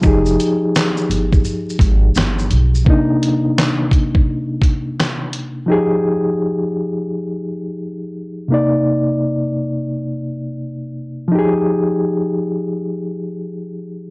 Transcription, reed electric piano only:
X:1
M:4/4
L:1/8
Q:"Swing 16ths" 1/4=85
K:Fdor
V:1 name="Reed electric piano"
[F,EGA]8 | [C,B,DE]8 | [F,EGA]8 | [C,B,Ed]8 |
[F,EGA]8 |]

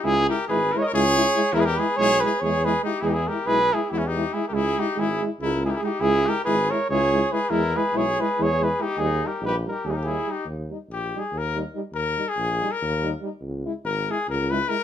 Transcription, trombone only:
X:1
M:7/8
L:1/8
Q:1/4=142
K:none
V:1 name="Trombone" clef=bass
_A, A, A, A, A, A, A, | ^G, G, G, G, G, G, G, | ^G, G, G, G, G, G, G, | _A, A, A, A, A, A, A, |
_A, A, A, A, A, A, A, | ^G, G, G, G, G, G, G, | G, G, G, G, G, G, G, | z G, z G, z G, G, |
z G, z G, z G, G, | z _A, z A, z A, A, |]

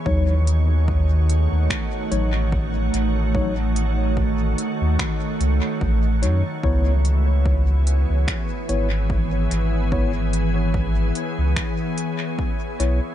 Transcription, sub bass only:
X:1
M:4/4
L:1/16
Q:"Swing 16ths" 1/4=73
K:C#m
V:1 name="Sub bass" clef=bass
D,,6- D,, D,, z2 A,,,4 A,,,2- | A,,,6 z D,, z2 C,, z A,,,2 F,, z | C,,6- C,, C,, z2 G,,,4 G,,,2- | G,,,6 z C,, z6 B,,, z |]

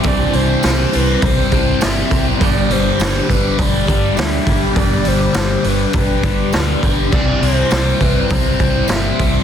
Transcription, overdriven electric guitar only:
X:1
M:4/4
L:1/8
Q:1/4=102
K:G
V:1 name="Overdriven electric guitar" clef=bass
[C,G,C] [C,G,C] [C,G,C] [C,G,C] [C,G,C] [C,G,C] [C,G,C] [C,G,C] | [G,,D,G,] [G,,D,G,] [G,,D,G,] [G,,D,G,] [G,,D,G,] [G,,D,G,] [G,,D,G,] [G,,D,G,] | [G,,D,G,] [G,,D,G,] [G,,D,G,] [G,,D,G,] [G,,D,G,] [G,,D,G,] [G,,D,G,] [G,,D,G,] | [C,G,C] [C,G,C] [C,G,C] [C,G,C] [C,G,C] [C,G,C] [C,G,C] [C,G,C] |]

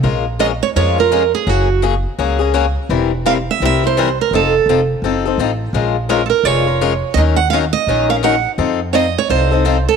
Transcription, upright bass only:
X:1
M:4/4
L:1/8
Q:"Swing" 1/4=168
K:Bbm
V:1 name="Upright bass" clef=bass
B,,,4 F,,4 | G,,,4 D,,4 | =E,,,4 C,,4 | F,,,2 F,,,2 G,,,2 =A,,,2 |
B,,,4 F,,,4 | E,,4 B,,,4 | F,,4 C,,4 |]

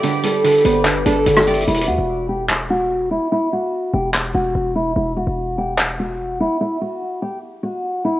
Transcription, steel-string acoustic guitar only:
X:1
M:4/4
L:1/8
Q:1/4=146
K:Em
V:1 name="Steel-string acoustic guitar"
G A2 B z A2 G | E F2 G z F2 E | E F2 G z F2 E | E F2 G z F2 E |
E F2 G z F2 E |]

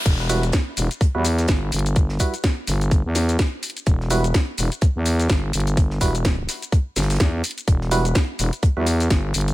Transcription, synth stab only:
X:1
M:4/4
L:1/16
Q:"Swing 16ths" 1/4=126
K:Em
V:1 name="Synth stab"
z2 [G,EFB] z6 [G,EFB] z6 | z2 [G,EFB] z12 z | z2 [G,EFB] z12 z | z2 [G,EFB] z12 z |
z2 [G,EFB] z6 [G,EFB] z6 |]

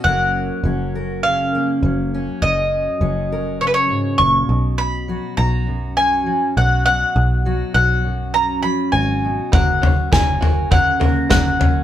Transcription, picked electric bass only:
X:1
M:4/4
L:1/8
Q:1/4=101
K:F#
V:1 name="Picked electric bass" clef=bass
F,,,2 F,,,4 F,,,2 | F,,,2 F,,,4 F,,, B,,,- | B,,,2 B,,,4 B,,,2 | B,,,2 B,,,4 G,,,2 |
F,,,2 F,,,4 F,,,2 |]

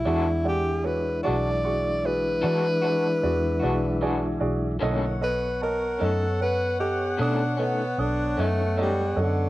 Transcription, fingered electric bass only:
X:1
M:12/8
L:1/8
Q:3/8=51
K:Emix
V:1 name="Fingered electric bass" clef=bass
E,,3 B,,,3 E,2 E,, B,,,2 B,,, | B,,,3 F,,3 B,,2 B,,, F,,2 F,, |]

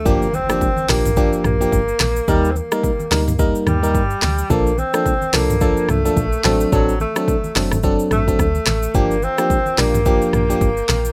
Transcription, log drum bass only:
X:1
M:4/4
L:1/16
Q:"Swing 16ths" 1/4=108
K:Gm
V:1 name="Log drum bass" clef=bass
G,,,3 z3 B,,,4 B,,,2 G,,,2 B,,,2 | E,,3 z3 D,,4 E,,2 G,,2 D,,2 | B,,,3 z3 C,,4 C,,2 B,,,2 A,,,2 | A,,,3 z3 ^F,,,4 A,,,2 D,,2 A,,,2 |
G,,,3 z3 B,,,4 B,,,2 G,,,2 B,,,2 |]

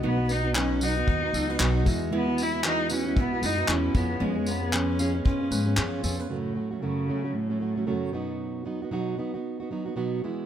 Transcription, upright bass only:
X:1
M:4/4
L:1/8
Q:"Swing 16ths" 1/4=115
K:Bmix
V:1 name="Upright bass" clef=bass
B,,,4 D,, C,, B,,, E,,- | E,,4 B,,, F,, E,, ^E,, | ^E,,4 E,, G,, F,, E,, | z8 |
z8 |]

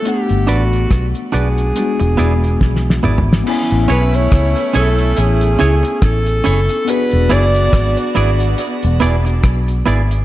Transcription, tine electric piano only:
X:1
M:4/4
L:1/8
Q:"Swing 16ths" 1/4=70
K:Edor
V:1 name="Tine electric piano"
[A,B,Df]4 [G,^G,B,DF]4 | [K:A] [B,CEg]8 | [B,DFG]8 |]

